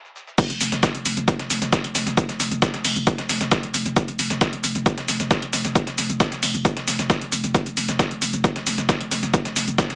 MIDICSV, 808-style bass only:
0, 0, Header, 1, 2, 480
1, 0, Start_track
1, 0, Tempo, 447761
1, 410, Time_signature, 4, 2, 24, 8
1, 10669, End_track
2, 0, Start_track
2, 0, Title_t, "808-style bass"
2, 0, Program_c, 0, 38
2, 534, Note_on_c, 0, 29, 80
2, 645, Note_off_c, 0, 29, 0
2, 651, Note_on_c, 0, 29, 99
2, 768, Note_off_c, 0, 29, 0
2, 775, Note_on_c, 0, 29, 79
2, 888, Note_off_c, 0, 29, 0
2, 1015, Note_on_c, 0, 29, 77
2, 1123, Note_off_c, 0, 29, 0
2, 1130, Note_on_c, 0, 29, 98
2, 1250, Note_off_c, 0, 29, 0
2, 1255, Note_on_c, 0, 29, 84
2, 1368, Note_off_c, 0, 29, 0
2, 1495, Note_on_c, 0, 29, 79
2, 1604, Note_off_c, 0, 29, 0
2, 1610, Note_on_c, 0, 29, 104
2, 1728, Note_off_c, 0, 29, 0
2, 1735, Note_on_c, 0, 29, 81
2, 1848, Note_off_c, 0, 29, 0
2, 1975, Note_on_c, 0, 29, 75
2, 2084, Note_off_c, 0, 29, 0
2, 2090, Note_on_c, 0, 29, 103
2, 2208, Note_off_c, 0, 29, 0
2, 2215, Note_on_c, 0, 29, 84
2, 2328, Note_off_c, 0, 29, 0
2, 2454, Note_on_c, 0, 29, 83
2, 2564, Note_off_c, 0, 29, 0
2, 2570, Note_on_c, 0, 29, 98
2, 2688, Note_off_c, 0, 29, 0
2, 2694, Note_on_c, 0, 29, 87
2, 2808, Note_off_c, 0, 29, 0
2, 2935, Note_on_c, 0, 29, 79
2, 3044, Note_off_c, 0, 29, 0
2, 3051, Note_on_c, 0, 29, 100
2, 3169, Note_off_c, 0, 29, 0
2, 3175, Note_on_c, 0, 29, 84
2, 3288, Note_off_c, 0, 29, 0
2, 3415, Note_on_c, 0, 29, 79
2, 3524, Note_off_c, 0, 29, 0
2, 3531, Note_on_c, 0, 29, 107
2, 3648, Note_off_c, 0, 29, 0
2, 3655, Note_on_c, 0, 29, 81
2, 3768, Note_off_c, 0, 29, 0
2, 3894, Note_on_c, 0, 29, 74
2, 4005, Note_off_c, 0, 29, 0
2, 4011, Note_on_c, 0, 29, 103
2, 4127, Note_off_c, 0, 29, 0
2, 4134, Note_on_c, 0, 29, 82
2, 4247, Note_off_c, 0, 29, 0
2, 4375, Note_on_c, 0, 29, 81
2, 4484, Note_off_c, 0, 29, 0
2, 4491, Note_on_c, 0, 29, 95
2, 4608, Note_off_c, 0, 29, 0
2, 4614, Note_on_c, 0, 29, 80
2, 4728, Note_off_c, 0, 29, 0
2, 4855, Note_on_c, 0, 29, 79
2, 4965, Note_off_c, 0, 29, 0
2, 4972, Note_on_c, 0, 29, 98
2, 5089, Note_off_c, 0, 29, 0
2, 5095, Note_on_c, 0, 29, 85
2, 5208, Note_off_c, 0, 29, 0
2, 5335, Note_on_c, 0, 29, 78
2, 5445, Note_off_c, 0, 29, 0
2, 5451, Note_on_c, 0, 29, 100
2, 5568, Note_off_c, 0, 29, 0
2, 5574, Note_on_c, 0, 29, 82
2, 5688, Note_off_c, 0, 29, 0
2, 5815, Note_on_c, 0, 29, 73
2, 5925, Note_off_c, 0, 29, 0
2, 5931, Note_on_c, 0, 29, 99
2, 6048, Note_off_c, 0, 29, 0
2, 6054, Note_on_c, 0, 29, 80
2, 6168, Note_off_c, 0, 29, 0
2, 6294, Note_on_c, 0, 29, 80
2, 6404, Note_off_c, 0, 29, 0
2, 6411, Note_on_c, 0, 29, 99
2, 6531, Note_off_c, 0, 29, 0
2, 6535, Note_on_c, 0, 29, 82
2, 6648, Note_off_c, 0, 29, 0
2, 6774, Note_on_c, 0, 29, 82
2, 6884, Note_off_c, 0, 29, 0
2, 6890, Note_on_c, 0, 29, 95
2, 7007, Note_off_c, 0, 29, 0
2, 7013, Note_on_c, 0, 29, 83
2, 7127, Note_off_c, 0, 29, 0
2, 7254, Note_on_c, 0, 29, 78
2, 7364, Note_off_c, 0, 29, 0
2, 7371, Note_on_c, 0, 29, 98
2, 7488, Note_off_c, 0, 29, 0
2, 7494, Note_on_c, 0, 29, 76
2, 7607, Note_off_c, 0, 29, 0
2, 7734, Note_on_c, 0, 29, 71
2, 7843, Note_off_c, 0, 29, 0
2, 7850, Note_on_c, 0, 29, 99
2, 7967, Note_off_c, 0, 29, 0
2, 7973, Note_on_c, 0, 29, 85
2, 8087, Note_off_c, 0, 29, 0
2, 8213, Note_on_c, 0, 29, 84
2, 8323, Note_off_c, 0, 29, 0
2, 8329, Note_on_c, 0, 29, 100
2, 8446, Note_off_c, 0, 29, 0
2, 8453, Note_on_c, 0, 29, 80
2, 8567, Note_off_c, 0, 29, 0
2, 8693, Note_on_c, 0, 29, 78
2, 8803, Note_off_c, 0, 29, 0
2, 8809, Note_on_c, 0, 29, 101
2, 8928, Note_off_c, 0, 29, 0
2, 8934, Note_on_c, 0, 29, 88
2, 9047, Note_off_c, 0, 29, 0
2, 9173, Note_on_c, 0, 29, 79
2, 9282, Note_off_c, 0, 29, 0
2, 9289, Note_on_c, 0, 29, 108
2, 9406, Note_off_c, 0, 29, 0
2, 9413, Note_on_c, 0, 29, 83
2, 9527, Note_off_c, 0, 29, 0
2, 9653, Note_on_c, 0, 29, 77
2, 9762, Note_off_c, 0, 29, 0
2, 9769, Note_on_c, 0, 29, 104
2, 9887, Note_off_c, 0, 29, 0
2, 9893, Note_on_c, 0, 29, 83
2, 10007, Note_off_c, 0, 29, 0
2, 10132, Note_on_c, 0, 29, 83
2, 10243, Note_off_c, 0, 29, 0
2, 10249, Note_on_c, 0, 29, 100
2, 10367, Note_off_c, 0, 29, 0
2, 10374, Note_on_c, 0, 29, 79
2, 10487, Note_off_c, 0, 29, 0
2, 10614, Note_on_c, 0, 29, 76
2, 10669, Note_off_c, 0, 29, 0
2, 10669, End_track
0, 0, End_of_file